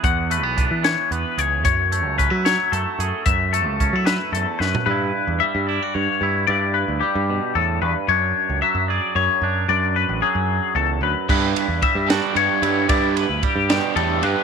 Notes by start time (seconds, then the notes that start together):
Already playing: E3 B3 G#4
0.03 E2 F#5, kick, closed hi-hat
0.30 A3 B4, closed hi-hat
0.43 B1 B3
0.57 D4, kick, closed hi-hat
0.71 E3
0.83 E3 C#5, snare, closed hi-hat
1.11 E2 B3 B4, closed hi-hat
1.38 C#2 G#4 C#5, closed hi-hat
1.64 F#2 C#5, kick, closed hi-hat
1.92 A3, closed hi-hat
2.05 C#2
2.18 C#4 B4, kick, closed hi-hat
2.30 F#3 E4
2.45 F#3 C#5, snare, closed hi-hat
2.72 F#2 A3 A4, closed hi-hat
2.99 F#2 G#4, closed hi-hat
3.26 F#2 E5, kick, closed hi-hat
3.53 A3 A4, closed hi-hat
3.67 C#2
3.80 C#4, kick, closed hi-hat
3.93 F#3 E4
4.06 B4, snare, closed hi-hat
4.32 E2 F#2 A4, closed hi-hat
4.59 F#2 B4, snare
4.75 floor tom
4.86 G2 B4
4.90 G2 E4
5.27 E2
5.40 G3 E5
5.55 G2
5.67 E4 D5
5.82 F#4
5.94 G2 C#5
6.21 G2 E4
6.47 G2 E4 D5
6.74 B4
6.88 D2
7.01 G3 G4
7.15 G2
7.30 B2
7.55 E2 A2 A4
7.82 E2 G2 B4
8.08 F#2 D4 C#5
8.49 C#2
8.62 F#3 E5
8.75 F#2
8.88 G#4 D5
9.15 F#2 C#5
9.42 F#2 D4
9.69 F#2 D4 D5
9.96 B4
10.09 A1
10.22 F#3 G#4
10.35 F#2
10.75 C#2 E2 A4
11.01 D2 F#2 B4
11.29 G2 G3 B3 D4 E4 G4 B4, kick, crash
11.56 ride
11.68 E2
11.82 G3 E5, kick, ride
11.95 G2
12.08 G3 B3 D4 F#4 G4 D5, snare, ride
12.35 G2 G3 B3 D4 G4 C#5, ride
12.62 G2 G3 B3 D4 E4 G4, ride
12.89 G2 G3 B3 D4 E4 G4 D5, kick, ride
13.16 B4, ride
13.29 D2
13.43 G3 G4, kick, ride
13.56 G2
13.70 B2 G3 B3 D4 G4, snare, ride
13.95 E2 A2 G3 B3 D4 G4 A4, ride
14.22 G2 G3 B3 D4 G4 B4, ride